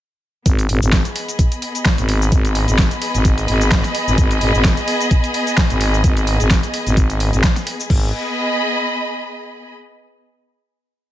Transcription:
0.46 G#1 B3, kick, closed hi-hat, shaker
0.59 closed hi-hat, shaker
0.69 G#1, open hi-hat
0.82 G#1, shaker
0.91 G#4, kick, snare, closed hi-hat, shaker
1.05 D#5 B5, closed hi-hat, shaker
1.16 open hi-hat
1.28 closed hi-hat, shaker
1.39 kick, closed hi-hat, shaker
1.52 closed hi-hat, shaker
1.62 open hi-hat
1.75 closed hi-hat, shaker
1.85 kick, snare, closed hi-hat, shaker
1.98 G#1, closed hi-hat, shaker
2.09 open hi-hat
2.22 shaker
2.32 G#1, kick, closed hi-hat, shaker
2.45 closed hi-hat, shaker
2.55 open hi-hat
2.68 G#1, closed hi-hat, shaker
2.78 kick, snare, closed hi-hat, shaker
2.91 closed hi-hat, shaker
3.02 open hi-hat
3.14 G#1, closed hi-hat, shaker
3.25 kick, closed hi-hat, shaker
3.38 closed hi-hat, shaker
3.48 G#1, open hi-hat
3.61 closed hi-hat, shaker
3.71 kick, snare, closed hi-hat, shaker
3.84 snare, closed hi-hat, shaker
3.95 open hi-hat
4.08 G#1, shaker
4.18 G#1, kick, closed hi-hat, shaker
4.31 closed hi-hat, shaker
4.41 G#1, open hi-hat
4.54 G#1, shaker
4.64 kick, snare, closed hi-hat, shaker
4.77 closed hi-hat, shaker
4.88 open hi-hat
5.01 closed hi-hat, shaker
5.11 kick, closed hi-hat, shaker
5.24 closed hi-hat, shaker
5.34 open hi-hat
5.47 closed hi-hat, shaker
5.57 kick, snare, closed hi-hat, shaker
5.70 G#1, closed hi-hat, shaker
5.81 open hi-hat
5.94 shaker
6.04 G#1, kick, closed hi-hat, shaker
6.17 closed hi-hat, shaker
6.27 open hi-hat
6.40 G#1, closed hi-hat, shaker
6.50 kick, snare, closed hi-hat, shaker
6.63 closed hi-hat, shaker
6.74 open hi-hat
6.87 G#1, closed hi-hat, shaker
6.97 kick, closed hi-hat, shaker
7.10 closed hi-hat, shaker
7.20 open hi-hat
7.33 G#1, closed hi-hat, shaker
7.43 kick, snare, closed hi-hat, shaker
7.56 snare, closed hi-hat, shaker
7.67 open hi-hat
7.80 shaker
7.90 G#1 B3, kick, crash
7.98 G#4
8.05 D#5
8.11 B5

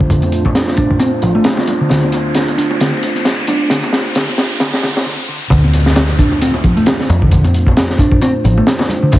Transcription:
Already playing: F2 A3 D4 F4 C5, riser
0.00 kick
0.10 D3, kick, closed hi-hat
0.22 closed hi-hat, high bongo, high conga
0.32 closed hi-hat
0.45 kick, high bongo
0.55 snare, closed hi-hat
0.67 snare, high conga
0.77 D4, kick, closed hi-hat, high bongo
0.91 kick
0.99 C4, closed hi-hat, high bongo, high conga
1.22 A1 F3, closed hi-hat
1.35 A3, high bongo, high conga
1.44 snare, closed hi-hat
1.57 snare, high bongo
1.67 closed hi-hat, high conga, low conga
1.80 D3
1.89 D2 D3, snare, closed hi-hat, high bongo
2.03 high conga
2.12 closed hi-hat, high bongo
2.34 snare, closed hi-hat
2.48 closed hi-hat, high bongo, high conga
2.58 D4, closed hi-hat
2.71 high bongo
2.80 D3, snare, closed hi-hat, high conga
3.03 closed hi-hat, high bongo
3.15 closed hi-hat, high conga
3.25 snare, closed hi-hat, high bongo
3.47 D4, closed hi-hat, high conga, low conga
3.60 high bongo
3.70 D3, snare, closed hi-hat
3.83 closed hi-hat, high bongo, high conga
3.93 snare, closed hi-hat
4.15 D3, snare, closed hi-hat, high bongo
4.29 high conga
4.38 snare, closed hi-hat, high bongo
4.60 D3, snare, closed hi-hat, high conga
4.73 snare, high bongo
4.83 C2 D3, snare, closed hi-hat
4.96 snare, high bongo, high conga
5.06 D3
5.28 D3
5.50 D2 D3 A3 D4 F4 C5, kick, closed hi-hat, downlifter
5.64 high conga
5.73 closed hi-hat, high bongo
5.86 snare
5.95 snare, closed hi-hat, high bongo
6.09 closed hi-hat
6.19 D4, kick, closed hi-hat
6.32 high bongo
6.41 C4, closed hi-hat
6.54 high bongo
6.64 F3, kick, closed hi-hat, high conga
6.77 A3, closed hi-hat
6.86 snare, closed hi-hat, high bongo
7.00 snare
7.09 F2, closed hi-hat, high bongo, low conga
7.22 D3, kick
7.31 D3, kick, closed hi-hat
7.44 closed hi-hat, high bongo, high conga
7.54 closed hi-hat
7.67 kick, high bongo
7.77 snare, closed hi-hat
7.90 snare
7.98 D4, kick, closed hi-hat, high bongo
8.12 kick
8.22 C4, closed hi-hat, high bongo
8.44 A1 F3, closed hi-hat, high conga
8.57 A3, high bongo
8.67 snare, closed hi-hat
8.79 snare, high bongo
8.89 closed hi-hat, low conga
9.03 D3
9.12 D2 D3, kick, closed hi-hat, high bongo

